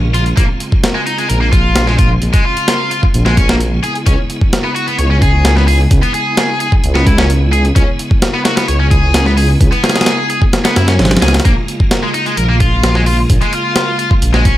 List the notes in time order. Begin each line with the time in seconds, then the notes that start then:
Already playing: A#1 C#3 G#3 A#3 F4
0.14 F4, closed hi-hat
0.26 closed hi-hat
0.37 A#1 A#3 C4, kick, closed hi-hat
0.60 closed hi-hat
0.72 kick
0.84 snare, closed hi-hat
0.95 G#3
1.07 D#4, closed hi-hat
1.18 G#3, closed hi-hat
1.29 A#1 A#4, closed hi-hat
1.41 A#3
1.52 F4, kick, closed hi-hat
1.76 snare, closed hi-hat
1.87 G#3, snare
1.99 F4, kick, closed hi-hat
2.22 A#1, closed hi-hat
2.33 G#3, kick, closed hi-hat
2.45 F4
2.57 closed hi-hat
2.68 snare, closed hi-hat
2.91 F4, closed hi-hat
3.03 kick
3.14 A#1, closed hi-hat
3.26 G#3, snare
3.37 C#4, kick, closed hi-hat
3.49 A#3, snare
3.61 closed hi-hat
3.83 B3 E4 G#4, closed hi-hat
3.95 closed hi-hat
4.06 C#2 C#4, kick, closed hi-hat
4.30 closed hi-hat
4.41 kick
4.53 snare, closed hi-hat
4.64 B3
4.75 F#4, closed hi-hat
4.87 B3, closed hi-hat
4.99 C#2 C#5, closed hi-hat
5.11 C#4
5.22 G#4, kick, closed hi-hat
5.45 snare, closed hi-hat
5.57 B3, snare
5.68 G#4, open hi-hat
5.91 C#2, kick, closed hi-hat
6.03 B3, closed hi-hat
6.14 G#4, closed hi-hat
6.37 snare, closed hi-hat
6.60 G#4, closed hi-hat
6.72 kick
6.84 C#2, closed hi-hat
6.95 B3, snare
7.06 E4, kick, closed hi-hat
7.18 C#4, snare
7.30 closed hi-hat
7.53 G#4, closed hi-hat
7.65 closed hi-hat
7.76 C#2 C#4, kick, closed hi-hat
7.99 closed hi-hat
8.11 kick
8.22 snare, closed hi-hat
8.34 B3
8.45 F#4, snare, closed hi-hat
8.57 B3, snare, closed hi-hat
8.68 C#2 C#5, closed hi-hat
8.80 C#4
8.91 G#4, kick, closed hi-hat
9.14 snare, closed hi-hat
9.26 B3, snare
9.38 G#4, open hi-hat
9.61 C#2, kick, closed hi-hat
9.72 B3, closed hi-hat
9.84 G#4, snare, closed hi-hat
9.89 snare, closed hi-hat
9.96 snare, closed hi-hat
10.01 snare, closed hi-hat
10.06 snare, closed hi-hat
10.30 G#4, closed hi-hat
10.42 kick
10.53 snare, closed hi-hat
10.65 B3, snare, closed hi-hat
10.76 F#2 E4, snare, closed hi-hat
10.88 C#4, snare, closed hi-hat
10.99 G#1, snare, closed hi-hat
11.05 snare, closed hi-hat
11.11 snare, closed hi-hat
11.17 snare, closed hi-hat
11.22 C#2 G#4, snare, closed hi-hat
11.28 snare, closed hi-hat
11.34 snare, closed hi-hat
11.40 snare, closed hi-hat
11.45 A#1 C#3 G#3 A#3 F4, kick, closed hi-hat
11.68 closed hi-hat
11.80 kick
11.91 snare, closed hi-hat
12.03 G#3
12.14 D#4, closed hi-hat
12.26 G#3, closed hi-hat
12.37 A#1 A#4, closed hi-hat
12.49 A#3
12.60 F4, kick, closed hi-hat
12.83 snare, closed hi-hat
12.95 G#3, snare
13.06 F4, open hi-hat
13.30 A#1, kick, closed hi-hat
13.42 G#3, closed hi-hat
13.53 F4, closed hi-hat
13.76 snare, closed hi-hat
13.99 F4, closed hi-hat
14.11 kick
14.22 A#1, closed hi-hat
14.34 G#3, snare
14.45 C#4, kick, closed hi-hat